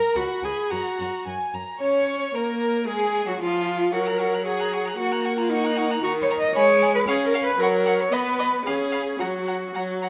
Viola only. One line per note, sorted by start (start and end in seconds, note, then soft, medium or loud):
0.00 0.18 A#4 medium
0.16 0.46 F#4 medium
0.44 0.73 G#4 medium
0.71 1.26 F#4 medium
1.80 2.31 C#4 medium
2.34 2.88 A#3 medium
2.87 3.26 G#3 medium
3.27 3.39 F#3 medium
3.40 3.92 F3 medium
3.94 4.95 F#3 medium
4.97 6.00 A#3 medium
6.02 6.48 D#3 medium
6.55 7.01 G#3 medium
7.07 7.53 C#4 medium
7.59 8.06 F#3 medium
8.12 8.59 B3 medium
8.65 9.13 C#4 medium
9.20 9.68 F#3 medium
9.75 10.09 F#3 medium